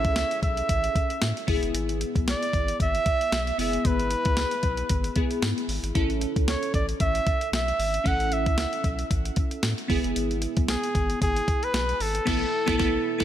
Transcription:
Already playing: C#4 E4 G#4 A4 E5
0.04 C#2, kick, closed hi-hat
0.16 snare, closed hi-hat, tambourine
0.31 closed hi-hat
0.42 B1 E5, kick, closed hi-hat
0.57 closed hi-hat
0.69 A1, kick, closed hi-hat
0.84 closed hi-hat
0.95 kick, closed hi-hat
1.10 closed hi-hat
1.22 A2, snare, closed hi-hat, tambourine
1.37 closed hi-hat
1.47 G#1 B3 E4 G#4, kick, open hi-hat
1.63 F#1, closed hi-hat
1.74 G#1, closed hi-hat
1.89 closed hi-hat
2.01 closed hi-hat
2.16 B1, kick, closed hi-hat
2.28 D5, snare, closed hi-hat, tambourine
2.43 closed hi-hat
2.53 G#1, kick, closed hi-hat
2.68 closed hi-hat
2.80 G#1 E5, kick, closed hi-hat
2.95 closed hi-hat
3.06 kick, closed hi-hat
3.21 closed hi-hat
3.32 B1, snare, closed hi-hat, tambourine
3.47 closed hi-hat
3.58 F#1 B3 E4 G#4 E5, open hi-hat
3.73 closed hi-hat
3.85 G#1 B4, kick, closed hi-hat
3.99 closed hi-hat
4.11 closed hi-hat
4.25 C#2, kick, closed hi-hat
4.37 snare, closed hi-hat, tambourine
4.51 closed hi-hat
4.63 B1, kick, closed hi-hat
4.77 closed hi-hat
4.89 G#1, kick, closed hi-hat
5.04 closed hi-hat
5.16 B3 E4 G#4, kick, closed hi-hat
5.31 closed hi-hat
5.42 G#2, snare, closed hi-hat, tambourine
5.58 closed hi-hat
5.68 G#1, open hi-hat
5.83 G#1, closed hi-hat
5.95 A1 C#4 E4 A4, kick, closed hi-hat
6.10 closed hi-hat
6.21 closed hi-hat
6.36 C#2, kick, closed hi-hat
6.48 C#5, snare, closed hi-hat, tambourine
6.63 closed hi-hat
6.74 A1 D5, kick, closed hi-hat
6.89 closed hi-hat
7.00 A1 E5, kick, closed hi-hat
7.15 closed hi-hat
7.27 kick, closed hi-hat
7.41 closed hi-hat
7.52 B1 E5, snare, closed hi-hat, tambourine
7.68 closed hi-hat
7.79 G#1, open hi-hat
7.94 closed hi-hat
8.04 A1 C#4 E4 A4 F#5, kick, closed hi-hat
8.20 closed hi-hat
8.32 E5, closed hi-hat
8.46 C#2, kick, closed hi-hat
8.58 snare, closed hi-hat, tambourine
8.73 closed hi-hat
8.84 B1, kick, closed hi-hat
8.99 closed hi-hat
9.11 A1, kick, closed hi-hat
9.25 closed hi-hat
9.36 kick, closed hi-hat
9.51 closed hi-hat
9.63 A2, snare, closed hi-hat, tambourine
9.78 closed hi-hat
9.88 G#1 B3 E4 G#4, kick, open hi-hat
10.04 F#1, closed hi-hat
10.16 G#1, closed hi-hat
10.31 closed hi-hat
10.42 closed hi-hat
10.57 B1, kick, closed hi-hat
10.68 G#4, snare, closed hi-hat, tambourine
10.83 closed hi-hat
10.95 G#1, kick, closed hi-hat
11.10 closed hi-hat
11.22 G#1 G#4, kick, closed hi-hat
11.36 closed hi-hat
11.48 kick, closed hi-hat
11.63 B4, closed hi-hat
11.74 B1, snare, closed hi-hat, tambourine
11.89 closed hi-hat
12.00 G#1 A4, open hi-hat
12.15 closed hi-hat
12.25 A1 B3 E4 A4, kick, snare, crash
12.66 A1 B3 E4 A4, kick, snare
12.78 A1 B3 E4 A4, kick, snare
13.18 A1 B3 E4 A4, kick, snare

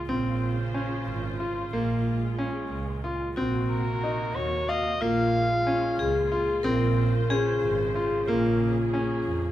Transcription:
Already playing: F4
0.08 A#1 C#3 C4 C5
0.74 C#4
1.06 G#1
1.40 F4
1.72 A#1 A#2 G#3 A#3
2.38 C#4
2.70 C#2
3.04 F4
3.35 A#1 C3 A#3 C4 F#4
3.69 A#4
4.04 D#4
4.34 D#2 C#5
4.69 D#5 F5
4.99 A#1 A#2 G#3 A#3 F4 F5
5.67 C#4
5.98 C#2 G#4
6.32 F4
6.63 A#1 C#3 C4 A#4 C5
7.30 C#4 G#4
7.62 G#1
7.95 F4
8.28 A#1 A#3 F4 G#4
8.94 C#4
9.26 F2

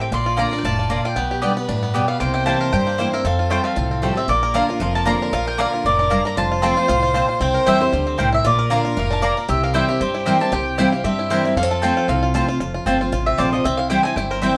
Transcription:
Already playing: A2 G4
0.00 C4 G5
0.12 A#1 A#2 A#3 D5 C6
0.26 F4
0.37 D3 A#3 D4 F4 A#4 D5 A#5
0.51 A#3 D4 F4
0.58 G5
0.63 F1 A2 F4 A5
0.79 A#3
0.90 A#2 A#3 D4 F4 D5 A#5
1.05 F4 G5
1.16 B1 B2 B3 B4
1.31 G4
1.42 D3 G3 B3 G4 D5 G5
1.57 B3 G4
1.69 G2 A2 D4
1.83 B3
1.94 B2 G3 B3 G4 D5 G5
2.08 B3 F5
2.20 C2 C3 A#3 C5 G5
2.34 E4 G5
2.46 E3 A#3 C4 E4 G4 C5 G5 A5
2.61 A#4
2.73 G2 G4 G5
2.87 A#3
2.98 E3 A#3 C4 E4 C5 G5
3.13 C4 E4 A#4 E5
3.24 F2 C4 A4 F5
3.39 F4
3.50 F3 G3 A3 C4 F4 G4 C5 G5
3.64 C4 F5
3.76 C2 A2 F4
3.91 C4
4.02 F3 G3 A3 C4 F4 G4 C5 G5
4.15 C4 G4 E5
4.27 A#1 A#2 A#3 A#4 D5
4.43 A#4
4.54 D3 A#3 D4 F4 D5 F5 A#5
4.69 D4 F4
4.80 F1 F2 F3 F5
4.95 A#3 A5
5.05 D3 A#3 D4 F4 A#4 D5 A#5
5.22 D4
5.32 A#1 A#2 F4 F5
5.47 A#4 G5
5.58 D3 A#3 D4 F4 D5 F5 A#5
5.74 F4
5.84 F1 A2 A#3 D5
5.99 D4
6.10 G2 A#3 F4 A#4 D5 A#5
6.25 A#3 A#5
6.36 F1 F2 F4 C5 A5
6.52 F4
6.62 F3 A3 C4 F4 C5 G5 A5
6.77 C4 F4
6.88 C2 A2 F4 F5
7.03 F4
7.14 A#2 C4 F4 C5 A5
7.29 F4
7.40 C2 C3 C4 C5 G5
7.54 A#4
7.66 E2 E3 G3 C4 E4 C5 E5 G5
7.80 C4 E4 G4 C5
7.93 D2 D3 G3
8.07 C4
8.18 C2 A2 C4 E4 A#4 C5 G5
8.33 E4 E5
8.44 A#1 A#2 F4 A#4 D5
8.59 A#4
8.70 D3 A#3 D4 F4 D5 F5 A#5
8.85 D4 F4
8.97 F1 A2 A#3 F5
9.11 D4 A5
9.21 A#2 A#3 F4 A#4 D5 A#5
9.37 A#3
9.48 C2 C3 G4 E5
9.63 A#4 F5
9.74 E3 G3 C4 E4 C5 E5 G5
9.88 C4 E4 G4
10.01 G2 C4 C5
10.14 E4
10.26 E3 G3 C4 E4 A#4 C5 G5
10.40 C4 E4 A5
10.52 C2 C3 G4 G5
10.78 E3 G3 C4 E4 C5 F5 G5
10.93 C4 E4 G4
11.04 G2 C4 E5
11.19 E4
11.30 E3 G3 C4 E4 A#4 C5 G5
11.45 C4 E4
11.56 F2 A#3 A4 F5
11.63 C4
11.71 F4 A5
11.82 F3 A3 C4 F4 C5 G5 A5
11.97 F4
12.08 C2 C3 C4 F5
12.23 F4
12.34 F3 A3 C4 F4 C5 A5
12.48 C4 F4
12.60 F1 F2 F4
12.74 F4
12.86 G1 F3 A3 C4 F4 C5 A5
13.01 C4 F4
13.12 A1 C3 F4
13.26 C4 E5
13.38 A#1 F3 A3 C4 F4 C5 D5 A5
13.53 F3 C4 F4 D#5
13.64 C2 C3 C4 E5
13.77 E4 F5
13.90 E3 G3 C4 E4 G4 C5 G5
14.03 C4 E4 G#5
14.16 G1 G2 E4 G5
14.31 A#4 C5
14.42 E3 G3 C4 E4 C5 E5 G5

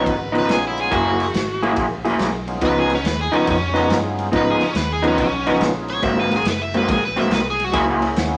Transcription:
Already playing: C#3 F3 B3 D#4 C#5
0.06 G#1 B4, kick, ride
0.32 C#3 F3 B3 D#4, ride
0.38 B4
0.48 A#1 B3 C#4 D#4 F4 G#4, snare, ride
0.67 E4
0.78 G#4, ride
0.91 F#1 F#3 A#3 E4 F#4 G#4, kick, ride
1.20 ride
1.34 G#1, snare, ride
1.62 F#3 A#3 C#4 E4 F#4 G#4, ride
1.76 A#1, kick, ride
2.05 F#3 A#3 E4 G#4, ride
2.19 B1, snare, ride
2.47 B3 C#4 D#4 F4 G#4, ride
2.61 C#2 C#3 F3 B3 D#4 B4, kick, ride
2.79 G#4
2.90 ride
2.95 C#4
3.04 D#2 B4, snare, ride
3.21 G#4
3.32 C#3 F3 B3 C#4 D#4, muted fingered electric bass stroke, ride
3.47 F2 C#4, kick, ride
3.74 C#3 F3 B3 C#4 D#4 F4 G#4, ride
3.89 G2, snare, ride
4.18 ride
4.32 G#2 C#3 F3 B3 D#4, kick, ride
4.36 B4
4.50 G#4
4.60 B3 C#4 D#4 F4 G#4, muted fingered electric bass stroke, ride
4.74 D#2 B4, snare, ride
4.92 G#4
5.03 C#3 F3 B3 D#4, ride
5.07 C#4
5.18 B1 C#4, kick, ride
5.45 C#3 F3 B3 C#4 D#4 F4 G#4, ride
5.60 A#1, snare, ride
5.88 C#5, ride
6.02 G#1 G#2 F#3 A#3 C4 E5, kick, ride
6.20 B4
6.30 A#3 C4 D#4 F#4 G#4, ride
6.36 G#4
6.44 F#1 B4, snare, ride
6.62 E5
6.74 G#2 F#3 A#3 C4 B4, ride
6.88 A#1 G#4, kick, snare, ride
7.05 B4
7.16 G#2 F#3 A#3 C4 E5, ride
7.31 C2 B4, snare, ride
7.50 G#4
7.60 ride
7.64 F#4
7.72 C#2 F#3 A#3 E4 G#4, kick, ride
8.01 A#3 C#4 E4 F#4 G#4, ride
8.16 D#2, snare, ride

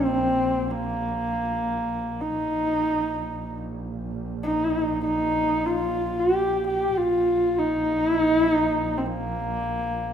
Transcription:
Already playing: A#1 C4
0.71 A#3
2.21 D#4
2.39 A#1
4.43 D#4
5.05 D#4
5.66 F4
6.19 G4
6.67 G4
6.96 A#1 F4
7.58 D#4
8.08 E4
8.22 D#4
8.36 E4
8.50 D#4
8.98 C4
9.06 A#3

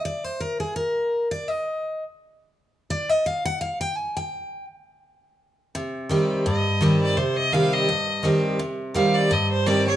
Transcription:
0.05 D5
0.24 C5
0.40 A#4
0.60 G#4
0.76 A#4
1.31 D5
1.48 D#5
2.90 D5
3.09 D#5
3.26 F5
3.45 F#5
3.61 F5
3.81 G5
3.97 G#5
4.17 G5
5.75 C3
6.09 D#3 G3 C4 G4
6.46 G2 D#5
6.81 D#3 G3 C4 G4
7.02 D5
7.17 C3 C5
7.37 D#5
7.52 D#3 G3 C4 G4 F5
7.73 D#5
7.89 G2
8.23 D#3 G3 C4 G4
8.59 C3
8.94 D#3 G3 C4 G4 F5
9.14 D5
9.31 G2 D#5
9.51 C5
9.66 D#3 G3 C4 G4 D5
9.87 C4 G4 C#5

